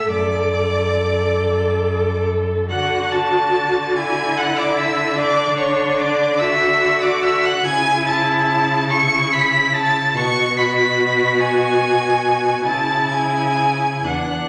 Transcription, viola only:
0.10 A4
2.71 F#4
3.97 E4
5.19 D4
6.40 F#4
7.64 E4
8.90 E4
10.16 F#4
12.66 E4
14.05 D4

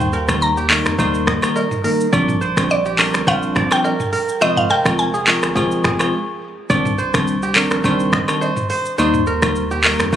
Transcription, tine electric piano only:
0.28 D#3 G3 A#3 D#4
0.70 D#3 G3 A#3 D#4
0.98 D#3 G3 A#3 D#4
1.43 D#3 G3 A#3 D#4
1.84 D#3 G3 A#3 D#4
2.13 F3 G3 C4 D4
2.57 F3 G3 C4 D4
2.98 F3 G3 C4 D4
3.27 F3 G3 C4 D4
3.71 F3 G3 C4 D4
4.41 F3 G#3 C4 F4
4.85 F3 G#3 C4 F4
5.27 F3 G#3 C4 F4
5.55 F3 G#3 C4 F4
6.00 F3 G#3 C4 F4
6.70 D#3 G3 C4 D4
7.14 D#3 G3 C4 D4
7.55 D#3 G3 C4 D4
7.84 D#3 G3 C4 D4
8.28 D#3 G3 C4 D4
8.98 D#3 G3 A#3 D#4
9.43 D#3 G3 A#3 D#4
9.84 D#3 G3 A#3 D#4
10.13 D#3 G3 A#3

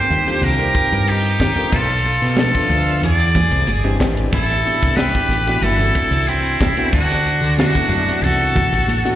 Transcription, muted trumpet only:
Already playing: C5
0.43 A#4
1.09 G4
1.74 A4
2.38 A4
3.03 D5
4.32 A4
4.96 B4
5.63 A4
6.28 E4
6.92 F#4
7.57 F#4
8.23 A4

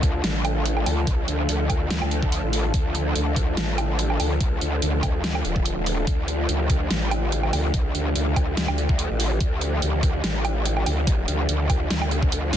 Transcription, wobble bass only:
Already playing: D2
0.24 A1
0.86 D2
1.28 D2
1.49 D2
1.91 D2
2.02 D2
2.43 A1
2.74 D2
3.16 D2
3.57 A1
4.20 D2
4.61 D2
4.82 D2
5.24 D2
5.45 D#1
5.77 D#1
6.07 D2
6.49 D2
6.91 A1
7.53 D2
7.95 D2
8.16 D2
8.57 D2
8.68 D2
9.10 A1
9.41 D2
9.82 D2
10.24 A1
10.86 D2
11.28 D2
11.49 D2
11.91 D2
12.53 D2

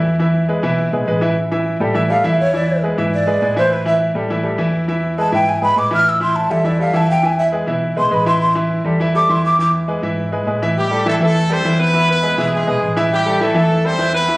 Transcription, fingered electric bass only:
Already playing: E2
0.63 B1
0.93 B1
1.07 A1
1.80 A2
2.24 E2
2.98 G#2
3.42 A2
4.15 A2
4.58 E2
5.32 G#2
5.62 G#2
5.76 A2
6.50 E2
6.94 E2
7.68 B1
7.97 B1
8.11 A1
8.84 E2
9.29 E2
10.02 G#2
10.47 A2
11.20 E2
11.64 E2
12.37 B1
12.67 B1
12.82 A1
13.54 E2
13.98 E2

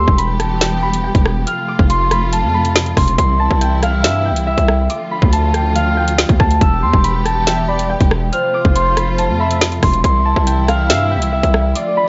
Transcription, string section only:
Already playing: E3 G3 B3 G4
1.47 C3 F3 A3 F4
3.18 E3 G3 E4
4.90 D3 F3 A3 F4
6.61 E3 G3 B3 G4
8.33 C3 F3 A3 F4
10.04 E3 G3 E4
11.75 D3 F3 A3 F4

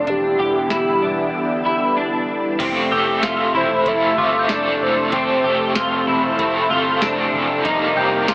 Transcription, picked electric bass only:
0.07 E1
0.39 E1
0.70 E1
1.02 E1
2.60 F1
2.91 F1
3.23 F1
3.54 E1
3.86 F1
4.18 G1
4.49 F1
4.80 F1
5.12 F1
5.44 F1
5.75 F1
6.07 E1
6.39 F1
6.71 G1
7.02 F1
7.33 F1
7.65 F1
7.96 F1
8.28 F1

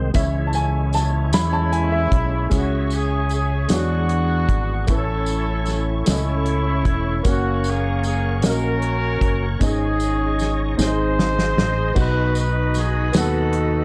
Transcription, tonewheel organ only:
Already playing: D#3 G#3 C4 C5
0.14 C#4 E4 C#5
2.51 G#4 C#5 E5 C#6
3.70 D4 F#5
4.90 E4 A4 C#5 C#6
7.26 A#4 F#5
9.60 G#4 D#5
10.78 G#4 C5 C6
11.97 F#4 B4 B5

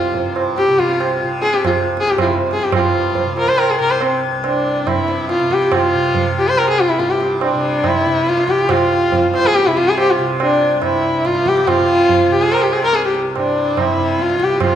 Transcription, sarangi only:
Already playing: F4
0.57 G4
0.79 F4
1.42 G#4
1.54 G4
1.66 F4
2.00 G#4
2.10 G4
2.21 E4 F4
2.27 F4
2.53 G#4
2.64 G4
2.75 F4
3.39 A#4
3.49 C5
3.59 A#4
3.70 G#4
3.81 A#4
3.90 C5
4.02 C4
4.44 D4
4.87 E4
5.31 F4
5.53 G4
5.66 G4
5.75 F4
6.39 G4
6.49 C5
6.58 A#4
6.70 G#4
6.80 F4
6.89 E4
6.99 F4
7.10 G4
7.42 D4
7.87 E4
8.29 F4
8.50 G4
8.71 F4
9.35 C5
9.47 G#4
9.56 G4
9.67 E4
9.77 F4
9.89 G#4
10.00 G4
10.10 F4
10.42 D4
10.85 E4
11.26 F4
11.48 G4
11.68 F4
12.32 G4
12.41 G#4
12.53 A#4
12.63 G4
12.73 G#4
12.85 A#4
12.95 G#4
13.06 G4
13.38 D4
13.80 E4
14.22 F4
14.43 G4
14.65 F4

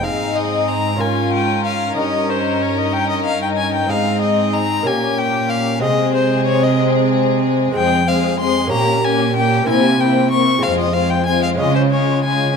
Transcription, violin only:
0.04 F5
0.36 D#5
0.68 A#5
1.01 G#5
1.33 G5
1.65 F5
1.96 D#5
2.29 C5
2.62 C#5
2.78 D#5
2.93 G5
3.10 D#5
3.25 F5
3.42 G5
3.57 G#5
3.74 G5
3.90 F5
4.22 D#5
4.54 A#5
4.87 G#5
5.18 G5
5.50 F5
5.83 D#5
6.14 C5
6.47 C#5
6.63 D#5
7.76 G5
8.08 F5
8.40 C6
8.72 A#5
9.04 G#5
9.36 G5
9.69 G#5
10.00 G5
10.31 C#6
10.63 F5
10.79 D#5
10.94 F5
11.10 G5
11.26 G#5
11.43 F5
11.59 D#5
11.75 C5
11.91 C#5
12.24 G#5

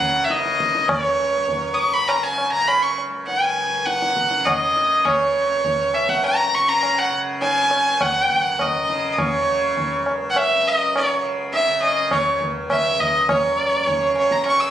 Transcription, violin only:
Already playing: F#5
0.24 E5
0.31 D#5
0.90 C#5
1.74 D#6
1.79 C#6
1.93 B5
2.07 A#5
2.23 G#5
2.52 A#5
2.67 B5
2.82 C#6
3.27 F#5
3.44 G#5
3.86 F#5
4.45 D#5
5.05 C#5
5.94 E5
6.09 F#5
6.25 A#5
6.55 C#6
6.68 A#5
6.98 F#5
7.41 G#5
8.01 F#5
8.60 D#5
9.12 D#5
9.19 C#5
10.30 F#5
10.37 E5
10.67 D#5
10.96 C#5
11.53 E5
11.82 D#5
12.12 C#5
12.71 E5
13.00 D#5
13.29 C#5
14.18 C#5
14.32 A#5
14.46 C#6
14.60 E6

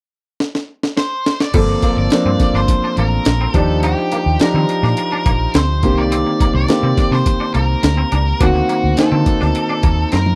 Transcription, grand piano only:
1.54 F3 A#3 C4 A4
2.12 F3 A#3 C4 D4
3.54 F3 D4 D#4 G4
4.40 F3 D4 D#4 G4
5.83 D3 A#3 C4 G4
5.90 D#3
6.68 D#3 A#3 C4 G4
8.40 D#3 A#3 C4 F#4
8.97 D#3 A#3 C4 D#4

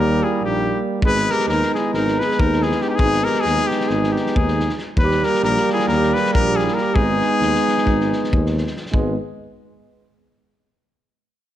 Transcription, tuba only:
Already playing: D#2
0.41 A#1
1.01 G#1
1.47 D#2
1.94 G#1
2.39 D#2
2.99 G#1
3.44 D#2
3.90 G#1
4.35 D#2
4.97 D#2
5.43 A#1
5.88 D#2
6.34 A#1
6.94 G#1
7.40 D#2
7.85 G#1
8.32 D#2
8.91 G#1

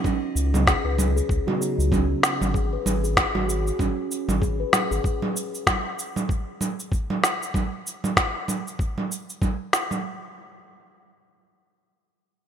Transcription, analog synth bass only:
0.35 C#2
0.85 C#2
1.29 C#2
1.78 C#2
2.41 G#1
2.86 G#1
3.35 G#1
3.79 G#1
4.28 G#1
4.91 G#1

